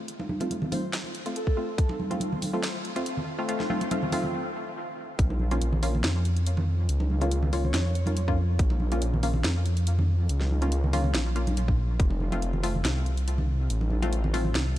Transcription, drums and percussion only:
0.08 closed hi-hat
0.20 muted conga
0.29 high conga
0.40 closed hi-hat, muted conga
0.51 closed hi-hat, high conga
0.62 low conga
0.72 open hi-hat, high conga
0.93 snare, closed hi-hat
1.04 muted conga
1.15 closed hi-hat
1.26 closed hi-hat
1.36 closed hi-hat
1.47 kick
1.78 kick, closed hi-hat
1.89 muted conga
2.00 high conga
2.11 closed hi-hat, muted conga
2.20 closed hi-hat, high conga
2.32 low conga
2.42 open hi-hat, high conga
2.63 snare, closed hi-hat
2.85 closed hi-hat
2.96 closed hi-hat
3.06 closed hi-hat
3.17 low conga
3.49 closed hi-hat
3.60 snare, muted conga
3.70 high conga
3.81 closed hi-hat, muted conga
3.91 closed hi-hat, high conga
4.02 low conga
4.12 open hi-hat, high conga
4.23 low conga
5.19 kick, closed hi-hat
5.30 muted conga
5.40 high conga
5.51 closed hi-hat, muted conga
5.61 closed hi-hat
5.73 low conga
5.83 open hi-hat
5.95 low conga
6.04 snare, closed hi-hat
6.25 closed hi-hat
6.36 closed hi-hat
6.46 closed hi-hat
6.57 muted conga, low conga
6.89 closed hi-hat
7.00 muted conga
7.10 high conga
7.21 closed hi-hat, muted conga
7.31 closed hi-hat
7.42 low conga
7.53 open hi-hat, high conga
7.65 low conga
7.74 snare, closed hi-hat
7.85 muted conga
7.95 closed hi-hat
8.06 closed hi-hat, high conga
8.17 closed hi-hat
8.28 kick, muted conga
8.59 kick, closed hi-hat
8.70 muted conga
8.80 high conga
8.92 closed hi-hat, muted conga
9.02 closed hi-hat
9.14 low conga
9.23 open hi-hat
9.34 low conga
9.44 snare, closed hi-hat
9.66 closed hi-hat
9.77 closed hi-hat
9.87 closed hi-hat
9.99 muted conga, low conga
10.29 closed hi-hat
10.41 snare, muted conga
10.51 high conga
10.62 closed hi-hat, muted conga
10.72 closed hi-hat
10.84 low conga
10.93 open hi-hat, high conga
11.04 low conga
11.15 snare, closed hi-hat
11.25 muted conga
11.36 closed hi-hat
11.47 closed hi-hat, high conga
11.57 closed hi-hat
11.68 kick, muted conga
12.00 kick, closed hi-hat
12.10 muted conga
12.20 high conga
12.32 closed hi-hat, muted conga
12.42 closed hi-hat
12.53 low conga
12.63 open hi-hat
12.75 low conga
12.85 snare, closed hi-hat
13.06 closed hi-hat
13.17 closed hi-hat
13.28 closed hi-hat
13.38 muted conga, low conga
13.70 closed hi-hat
13.81 muted conga
13.90 high conga
14.02 closed hi-hat, muted conga
14.13 closed hi-hat
14.24 low conga
14.34 open hi-hat, high conga
14.45 low conga
14.55 snare, closed hi-hat
14.66 muted conga

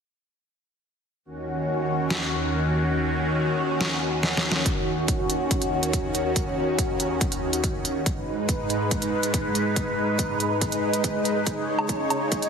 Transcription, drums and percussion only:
2.10 snare
3.81 snare
4.23 snare
4.37 snare
4.52 snare
4.66 kick, closed hi-hat
5.08 kick, closed hi-hat
5.30 closed hi-hat
5.51 kick, closed hi-hat
5.62 closed hi-hat
5.83 closed hi-hat
5.93 kick, closed hi-hat
6.15 closed hi-hat
6.36 kick, closed hi-hat
6.79 kick, closed hi-hat
7.00 closed hi-hat
7.21 kick, closed hi-hat
7.32 closed hi-hat
7.53 closed hi-hat
7.64 kick, closed hi-hat
7.85 closed hi-hat
8.06 kick, closed hi-hat
8.49 kick, closed hi-hat
8.70 closed hi-hat
8.91 kick, closed hi-hat
9.02 closed hi-hat
9.23 closed hi-hat
9.34 kick, closed hi-hat
9.55 closed hi-hat
9.76 kick, closed hi-hat
10.19 kick, closed hi-hat
10.40 closed hi-hat
10.61 kick, closed hi-hat
10.72 closed hi-hat
10.93 closed hi-hat
11.04 kick, closed hi-hat
11.25 closed hi-hat
11.47 kick, closed hi-hat
11.79 low woodblock
11.89 kick, closed hi-hat
12.10 closed hi-hat, low woodblock
12.32 kick, closed hi-hat
12.42 closed hi-hat

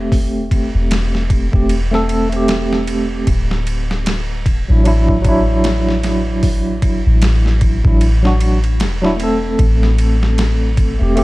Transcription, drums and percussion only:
0.12 kick, open hi-hat
0.51 kick, ride
0.91 snare, ride
1.15 snare
1.30 kick, ride
1.53 kick
1.69 ride
1.94 snare
2.09 ride
2.32 ride
2.48 snare, ride
2.73 snare
2.87 ride
3.27 kick, ride
3.51 snare
3.67 ride
3.91 snare
4.06 snare, ride
4.46 kick, ride
4.85 ride
5.08 kick
5.24 kick, ride
5.64 snare, ride
5.89 snare
6.03 snare, ride
6.43 kick, open hi-hat
6.82 kick, ride
7.22 snare, ride
7.46 snare
7.61 kick, ride
7.85 kick
8.01 ride
8.25 snare
8.41 ride
8.64 ride
8.80 snare, ride
9.04 snare
9.20 ride
9.59 kick, ride
9.83 snare
9.98 ride
10.23 snare
10.38 snare, ride
10.77 kick, ride
11.17 ride

